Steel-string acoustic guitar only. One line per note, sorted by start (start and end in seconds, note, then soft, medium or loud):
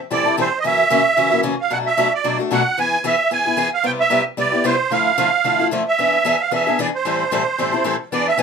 0.10 0.25 A2 medium
0.10 0.25 E3 medium
0.10 0.25 G3 medium
0.10 0.25 C4 medium
0.10 0.25 E4 medium
0.10 0.24 A4 medium
0.25 0.37 G3 soft
0.25 0.37 C4 soft
0.25 0.37 E4 medium
0.25 0.36 A4 soft
0.37 0.47 A2 medium
0.37 0.47 E3 medium
0.37 0.48 G3 medium
0.37 0.48 C4 medium
0.37 0.48 E4 medium
0.37 0.48 A4 medium
0.64 0.82 F#2 medium
0.64 0.82 C#3 medium
0.64 0.82 E3 medium
0.64 0.82 A#3 medium
0.64 0.82 C#4 medium
0.64 0.83 F#4 medium
0.90 1.00 F#2 medium
0.90 1.00 C#3 medium
0.90 1.00 E3 medium
0.90 1.01 A#3 medium
0.90 1.01 C#4 medium
0.90 1.01 F#4 medium
1.17 1.31 F#2 medium
1.17 1.31 C#3 medium
1.17 1.31 E3 medium
1.17 1.31 A#3 medium
1.17 1.30 C#4 medium
1.17 1.30 F#4 medium
1.31 1.42 E3 soft
1.31 1.43 A#3 soft
1.31 1.42 C#4 soft
1.31 1.43 F#4 soft
1.43 1.53 F#2 medium
1.43 1.53 C#3 medium
1.43 1.54 E3 medium
1.43 1.54 A#3 medium
1.43 1.54 C#4 medium
1.43 1.54 F#4 medium
1.70 1.88 B2 medium
1.70 1.89 F#3 medium
1.70 1.89 A3 medium
1.70 1.89 D4 medium
1.70 1.89 F#4 medium
1.97 2.07 B2 medium
1.97 2.07 F#3 medium
1.97 2.07 A3 medium
1.97 2.08 D4 medium
1.97 2.08 F#4 medium
2.24 2.38 B2 medium
2.24 2.38 F#3 medium
2.24 2.38 A3 medium
2.24 2.38 D4 medium
2.24 2.37 F#4 medium
2.39 2.50 A3 soft
2.39 2.51 D4 soft
2.39 2.50 F#4 soft
2.51 2.61 B2 medium
2.51 2.61 F#3 medium
2.51 2.61 A3 medium
2.51 2.61 D4 medium
2.51 2.61 F#4 medium
2.78 2.95 E3 medium
2.78 2.96 B3 medium
2.78 2.96 E4 medium
2.78 2.96 G#4 medium
3.04 3.14 E3 medium
3.04 3.14 B3 medium
3.04 3.14 E4 medium
3.04 3.15 G#4 medium
3.31 3.45 E3 medium
3.31 3.45 B3 medium
3.31 3.45 E4 medium
3.31 3.44 G#4 medium
3.45 3.56 B3 soft
3.45 3.57 E4 soft
3.45 3.57 G#4 soft
3.57 3.67 E3 medium
3.57 3.67 B3 medium
3.57 3.68 E4 medium
3.57 3.68 G#4 medium
3.83 4.02 C3 medium
3.83 4.02 G3 medium
3.83 4.02 B3 medium
3.83 4.02 E4 medium
3.83 4.02 G4 medium
4.10 4.20 C3 medium
4.10 4.21 G3 medium
4.10 4.21 B3 medium
4.10 4.21 E4 medium
4.10 4.21 G4 medium
4.37 4.52 C3 medium
4.37 4.52 G3 medium
4.37 4.52 B3 medium
4.37 4.52 E4 medium
4.37 4.51 G4 medium
4.52 4.64 B3 soft
4.52 4.64 E4 soft
4.52 4.63 G4 soft
4.64 4.74 C3 medium
4.64 4.74 G3 medium
4.64 4.74 B3 medium
4.64 4.75 E4 medium
4.64 4.75 G4 medium
4.90 5.09 D3 medium
4.90 5.09 F3 medium
4.90 5.09 A3 medium
4.90 5.10 E4 medium
5.18 5.28 D3 medium
5.18 5.28 F3 medium
5.18 5.28 A3 medium
5.18 5.28 E4 medium
5.44 5.58 D3 medium
5.44 5.59 F3 medium
5.44 5.59 A3 medium
5.44 5.58 E4 medium
5.60 5.71 F3 soft
5.60 5.71 A3 soft
5.60 5.71 E4 medium
5.71 5.81 D3 medium
5.71 5.82 F3 medium
5.71 5.82 A3 medium
5.71 5.82 E4 medium
5.98 6.16 E3 medium
5.98 6.16 B3 medium
5.98 6.17 D4 medium
5.98 6.17 G#4 medium
6.25 6.35 E3 medium
6.25 6.35 B3 medium
6.25 6.35 D4 medium
6.25 6.35 G#4 medium
6.51 6.65 E3 medium
6.51 6.66 B3 medium
6.51 6.66 D4 medium
6.51 6.66 G#4 medium
6.67 6.78 B3 soft
6.67 6.78 D4 soft
6.67 6.78 G#4 medium
6.79 6.88 E3 medium
6.79 6.88 B3 medium
6.79 6.89 D4 medium
6.79 6.89 G#4 medium
7.05 7.23 A2 medium
7.05 7.23 E3 medium
7.05 7.23 G3 medium
7.05 7.23 C4 medium
7.05 7.23 E4 medium
7.05 7.24 A4 medium
7.31 7.41 A2 medium
7.31 7.42 E3 medium
7.31 7.42 G3 medium
7.31 7.42 C4 medium
7.31 7.42 E4 medium
7.31 7.42 A4 medium
7.58 7.72 A2 soft
7.58 7.72 E3 medium
7.58 7.73 G3 medium
7.58 7.73 C4 medium
7.58 7.72 E4 medium
7.58 7.71 A4 medium
7.72 7.84 G3 soft
7.72 7.84 C4 soft
7.72 7.84 E4 soft
7.72 7.84 A4 soft
7.84 7.94 A2 medium
7.84 7.94 E3 medium
7.84 7.95 G3 medium
7.84 7.95 C4 medium
7.84 7.95 E4 medium
7.84 7.95 A4 medium
8.12 8.30 E3 medium
8.12 8.30 B3 medium
8.12 8.30 D4 medium
8.12 8.30 G#4 medium
8.38 8.43 E3 medium
8.38 8.43 B3 loud
8.38 8.43 D4 medium
8.38 8.43 G#4 medium